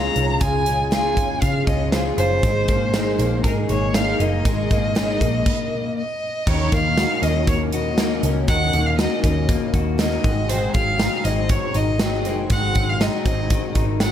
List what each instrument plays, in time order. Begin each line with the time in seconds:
Already playing: twelve-string acoustic guitar C#3 F3 G#3 F4 G#4, clean electric guitar C#3 C#4 F4 C#5, violin A#5
0.16 picked electric bass C2, clean electric guitar C#4, closed hi-hat
0.40 picked electric bass C#2, twelve-string acoustic guitar C#3 F3 G#3 F4 G#4, clean electric guitar C#3, violin G#5, kick, closed hi-hat
0.65 twelve-string acoustic guitar G#3 F4 G#4, clean electric guitar C#4, closed hi-hat
0.91 twelve-string acoustic guitar C#3 F3 G#3 F4 G#4, clean electric guitar F4, violin G#5, snare, closed hi-hat
1.17 picked electric bass D#2, twelve-string acoustic guitar G#3 F4 G#4, clean electric guitar C#4, kick, closed hi-hat
1.41 picked electric bass C#3, twelve-string acoustic guitar F3 G#3 F4 G#4, violin F5, kick, closed hi-hat
1.67 picked electric bass C#2, twelve-string acoustic guitar G#3 F4 G#4, clean electric guitar C#4, violin D#5, kick, closed hi-hat
1.92 twelve-string acoustic guitar C#3 F3 G#3 F4 G#4, clean electric guitar F4, violin C5, snare, closed hi-hat
2.18 picked electric bass F#1, clean electric guitar C#4, violin C5, closed hi-hat
2.43 picked electric bass G#1, twelve-string acoustic guitar G#3 A#3 D#4 G#4, clean electric guitar G#3, kick, closed hi-hat
2.68 clean electric guitar A#3, twelve-string acoustic guitar A#3 D#4 G#4, kick, closed hi-hat
2.93 twelve-string acoustic guitar G#3 A#3 D#4 G#4, clean electric guitar D#4, snare, closed hi-hat
3.18 picked electric bass A#1, clean electric guitar A#3, twelve-string acoustic guitar A#3 D#4 G#4, closed hi-hat
3.43 picked electric bass G#2, twelve-string acoustic guitar G#3 A#3 D#4, clean electric guitar G#4, violin A#4, kick, closed hi-hat
3.47 twelve-string acoustic guitar G#4
3.69 picked electric bass G#1, clean electric guitar A#3, twelve-string acoustic guitar A#3 D#4 G#4, violin C#5, closed hi-hat
3.94 twelve-string acoustic guitar G#3 A#3 D#4 G#4, clean electric guitar C#4, violin F5, snare, closed hi-hat
4.08 clean electric guitar D#4
4.20 picked electric bass F#1, clean electric guitar A#3, violin D#5, closed hi-hat
4.45 picked electric bass G#1, twelve-string acoustic guitar G#3 A#3 D#4 G#4, clean electric guitar G#3, kick, closed hi-hat
4.70 clean electric guitar A#3, twelve-string acoustic guitar A#3 D#4 G#4, kick, closed hi-hat
4.95 twelve-string acoustic guitar G#3 A#3 D#4 G#4, clean electric guitar C#4, snare, closed hi-hat
5.08 clean electric guitar D#4
5.20 picked electric bass A#1, clean electric guitar A#3, twelve-string acoustic guitar A#3 D#4 G#4, kick, closed hi-hat
5.46 kick, crash
5.97 violin D#5
6.47 picked electric bass D#2, clean electric guitar D#3, twelve-string acoustic guitar D#3 F#3 C#4 D#4 A#4, violin C#5, kick, crash
6.72 picked electric bass D#2, clean electric guitar A#3, twelve-string acoustic guitar C#4 D#4 A#4, violin F5, kick, closed hi-hat
6.97 twelve-string acoustic guitar F#3 C#4 D#4 A#4, clean electric guitar F#4, snare, closed hi-hat
7.22 picked electric bass D#2, clean electric guitar C#4, twelve-string acoustic guitar C#4 D#4 A#4, violin D#5, closed hi-hat
7.47 clean electric guitar A#3, violin C#5, kick, closed hi-hat
7.72 clean electric guitar F#4, violin D#5, closed hi-hat
7.97 twelve-string acoustic guitar F#3 C#4 D#4 A#4, clean electric guitar A#3, snare, closed hi-hat
8.23 picked electric bass C#2, clean electric guitar C#4, twelve-string acoustic guitar C#4 D#4 A#4, closed hi-hat
8.48 picked electric bass D#2, twelve-string acoustic guitar D#3 F#3 C#4 D#4 A#4, clean electric guitar D#3, violin F#5, kick, closed hi-hat
8.73 picked electric bass D#2, clean electric guitar A#3, twelve-string acoustic guitar C#4 D#4 A#4, closed hi-hat
8.86 violin F5
8.98 twelve-string acoustic guitar F#3 C#4 D#4 A#4, clean electric guitar F#4, violin D#5, snare, closed hi-hat
9.24 picked electric bass D#2, clean electric guitar C#4, twelve-string acoustic guitar C#4 D#4 A#4, violin D#5, kick, closed hi-hat
9.49 clean electric guitar A#3, kick, closed hi-hat
9.74 picked electric bass D#2, clean electric guitar F#4, kick, closed hi-hat
9.98 twelve-string acoustic guitar F#3 C#4 D#4 A#4, clean electric guitar A#3, violin D#5, snare, closed hi-hat
10.24 picked electric bass G#1, clean electric guitar G#2, twelve-string acoustic guitar F#3 C4 F#4 G#4, kick, closed hi-hat
10.49 clean electric guitar G#2, twelve-string acoustic guitar G#2 D#3 F#3 C4 F#4 G#4, violin C5, closed hi-hat
10.73 picked electric bass G#1, clean electric guitar F#3, twelve-string acoustic guitar F#3 C4 F#4 G#4, violin F5, kick, closed hi-hat
10.99 twelve-string acoustic guitar F#3 C4 F#4 G#4, clean electric guitar D#4, snare, closed hi-hat
11.24 picked electric bass G#1, twelve-string acoustic guitar F#3 C4 F#4 G#4, clean electric guitar C4, violin D#5, closed hi-hat
11.49 clean electric guitar D#3, violin C#5, kick, closed hi-hat
11.74 picked electric bass G#1, clean electric guitar D#4, violin D#5, closed hi-hat
11.99 twelve-string acoustic guitar F#3 C4 F#4 G#4, clean electric guitar F#3, snare, closed hi-hat
12.25 picked electric bass F#1, twelve-string acoustic guitar F#3 C4 F#4 G#4, clean electric guitar C4, closed hi-hat
12.50 picked electric bass G#1, twelve-string acoustic guitar G#2 D#3 F#3 C4 F#4 G#4, clean electric guitar G#2, violin F#5, kick, closed hi-hat
12.75 picked electric bass G#1, clean electric guitar F#3, twelve-string acoustic guitar F#3 C4 F#4 G#4, kick, closed hi-hat
12.89 violin F5
13.00 twelve-string acoustic guitar F#3 C4 F#4 G#4, clean electric guitar D#4, violin D#5, snare, closed hi-hat
13.25 picked electric bass G#1, twelve-string acoustic guitar F#3 C4 F#4 G#4, clean electric guitar C4, violin D#5, kick, closed hi-hat
13.50 clean electric guitar D#3, kick, closed hi-hat
13.75 picked electric bass G#1, clean electric guitar D#4, kick, closed hi-hat
14.00 twelve-string acoustic guitar F#3 C4 F#4 G#4, clean electric guitar F#3, violin F#5, snare, closed hi-hat